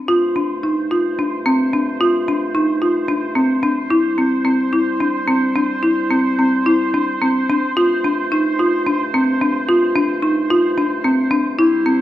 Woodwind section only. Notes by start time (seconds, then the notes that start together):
0.07 G2 A3 F4 C5
3.91 G3 E4
7.76 G2 A3 F4
11.59 G3 E4 C5